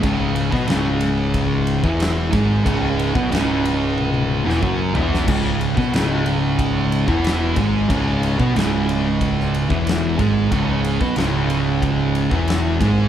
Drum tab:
CC |----------------|----------------|x---------------|----------------|
RD |x-x-x-x-x-x-x-x-|x-x-x-x---------|--x-x-x-x-x-x-x-|x-x-x-x-x-x-x-x-|
SD |---oo-------o---|----o------o---o|---oo-------o---|----o----o--o---|
T1 |----------------|--------oo------|----------------|----------------|
FT |----------------|--------------o-|----------------|----------------|
BD |o--o----o--o--o-|o--o--------o---|o--o----o--o--o-|o--o----o--o--o-|

CC |----------------|
RD |x-x-x-x-x-x-x-x-|
SD |---oo-------o---|
T1 |----------------|
FT |----------------|
BD |o--o----o--o--o-|